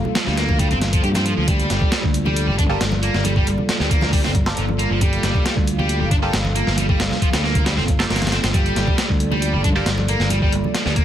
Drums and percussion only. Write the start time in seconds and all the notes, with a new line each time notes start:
0.04 high conga, low conga
0.15 snare, closed hi-hat
0.27 snare
0.37 snare, closed hi-hat
0.49 kick, high conga, low conga
0.59 kick, closed hi-hat
0.71 closed hi-hat
0.81 snare, closed hi-hat, high conga
0.93 kick, closed hi-hat
1.04 closed hi-hat
1.15 snare, closed hi-hat, high conga
1.26 closed hi-hat
1.48 kick, closed hi-hat, high conga
1.59 closed hi-hat
1.70 snare, closed hi-hat
1.80 kick, high conga, low conga
1.92 snare, closed hi-hat
2.04 kick
2.14 closed hi-hat
2.25 high conga, low conga
2.36 closed hi-hat
2.58 kick, closed hi-hat, high conga
2.81 snare, closed hi-hat
2.92 high conga
3.03 closed hi-hat
3.14 snare
3.24 closed hi-hat, high conga
3.36 kick
3.47 closed hi-hat
3.58 high conga, low conga
3.69 snare, closed hi-hat
3.80 snare
3.91 kick, closed hi-hat
4.01 snare, high conga, low conga
4.13 kick, open hi-hat
4.24 snare
4.35 kick, closed hi-hat, high conga
4.46 snare
4.57 closed hi-hat
4.69 high conga
4.79 closed hi-hat
5.01 kick, closed hi-hat, high conga
5.13 closed hi-hat
5.23 snare, closed hi-hat
5.35 kick, high conga, low conga
5.46 snare, closed hi-hat
5.57 kick
5.67 closed hi-hat
5.79 high conga, low conga
5.89 closed hi-hat
6.11 kick, closed hi-hat, high conga
6.33 snare, closed hi-hat
6.45 high conga
6.56 closed hi-hat
6.67 snare
6.78 closed hi-hat, high conga
6.89 kick
7.00 snare, closed hi-hat
7.11 snare, high conga, low conga
7.22 kick, closed hi-hat
7.33 snare, closed hi-hat
7.44 snare
7.55 kick, closed hi-hat, high conga, low conga
7.66 snare, closed hi-hat
7.77 snare
7.88 kick, closed hi-hat, high conga
8.00 snare
8.10 snare, closed hi-hat
8.16 snare, closed hi-hat
8.22 snare, closed hi-hat, high conga
8.27 snare, closed hi-hat
8.32 snare, closed hi-hat
8.44 snare, closed hi-hat
8.53 kick, closed hi-hat, high conga
8.66 closed hi-hat
8.76 snare, closed hi-hat
8.87 kick, high conga, low conga
8.98 snare, closed hi-hat
9.10 kick
9.20 closed hi-hat
9.32 high conga, low conga
9.42 closed hi-hat
9.64 kick, closed hi-hat, high conga
9.86 snare, closed hi-hat
9.98 high conga
10.08 closed hi-hat
10.20 snare
10.30 closed hi-hat, high conga
10.42 kick
10.52 closed hi-hat
10.64 high conga, low conga
10.74 snare, closed hi-hat
10.86 snare
10.96 kick, closed hi-hat